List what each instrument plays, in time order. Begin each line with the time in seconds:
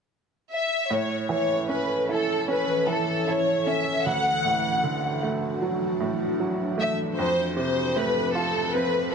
0.52 violin section E5
0.90 upright piano A2, ambient pad E3 C#4 A4, violin section C#5
1.29 upright piano E3, violin section C#5
1.69 upright piano C#4, violin section B4
2.09 upright piano E4, violin section A4
2.48 upright piano C#4, violin section B4
2.87 upright piano E3, violin section A4
3.27 upright piano E4, violin section C#5
3.66 upright piano C#4, violin section E5
4.05 upright piano D2, ambient pad D4 F#4, violin section F#5
4.44 upright piano A2
4.83 upright piano D3
5.23 upright piano A3
5.62 upright piano F#3
6.00 upright piano A2
6.40 upright piano F#3
6.78 upright piano A3, violin section E5
7.18 upright piano F2, ambient pad F3 C4 A4, violin section C5
7.56 upright piano C3, violin section C5
7.96 upright piano A3, violin section B4
8.34 upright piano F4, violin section A4
8.72 upright piano C4, violin section B4